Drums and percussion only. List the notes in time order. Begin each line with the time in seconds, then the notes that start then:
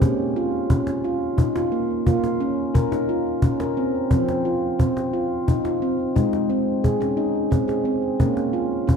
0.02 cajon bass
0.35 cajon slap
0.70 cajon bass
0.87 cajon slap
1.04 cajon slap
1.38 cajon bass
1.56 cajon slap
2.06 cajon bass
2.24 cajon slap
2.41 cajon slap
2.75 cajon bass
2.92 cajon slap
3.09 cajon slap
3.42 cajon bass
3.60 cajon slap
4.11 cajon bass
4.28 cajon slap
4.46 cajon slap
4.80 cajon bass
4.97 cajon slap
5.14 cajon slap
5.48 cajon bass
5.65 cajon slap
6.16 cajon bass
6.33 cajon slap
6.84 cajon bass
7.02 cajon slap
7.52 cajon bass
7.69 cajon slap
7.86 cajon slap
8.20 cajon bass
8.37 cajon slap
8.54 cajon slap
8.89 cajon bass